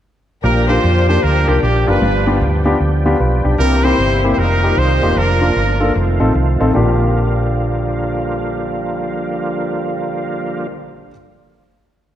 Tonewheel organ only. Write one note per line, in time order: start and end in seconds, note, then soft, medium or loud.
0.43 3.55 F3 medium
0.43 5.12 G3 medium
0.43 2.00 A#3 medium
0.43 3.55 D4 medium
0.43 3.55 G4 medium
2.02 3.58 B3 medium
3.58 4.37 E3 medium
3.58 5.93 A#3 medium
3.58 5.15 C4 medium
3.58 4.37 G4 medium
4.38 5.16 D#3 medium
4.38 5.16 F4 medium
5.16 6.73 F3 medium
5.16 5.95 D4 medium
5.95 6.74 D#3 medium
5.95 6.74 A3 medium
5.95 6.74 C4 soft
5.95 6.73 F4 medium
6.74 10.67 D3 medium
6.74 10.67 F3 medium
6.74 10.67 G3 medium
6.74 10.67 A#3 medium
6.74 10.67 F4 medium